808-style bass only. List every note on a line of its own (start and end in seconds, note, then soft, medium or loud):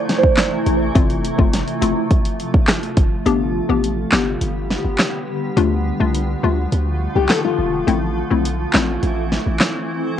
0.66 0.90 A1 loud
0.95 1.31 F1 loud
1.39 1.62 F1 loud
1.82 1.94 E1 medium
2.97 3.09 F1 medium
3.26 3.61 G1 loud
3.69 4.05 A1 medium
4.13 4.36 G1 loud
4.41 4.77 G1 medium
4.85 4.96 G1 medium
5.57 5.92 D2 loud
6.00 6.35 C2 loud
6.43 6.67 D2 medium
6.72 7.07 D2 loud
7.16 7.27 C2 medium
7.59 7.82 E1 medium
7.88 8.23 A1 loud
8.31 8.66 B1 medium
8.74 8.98 A1 medium
9.03 9.38 A1 loud
9.47 9.58 A1 medium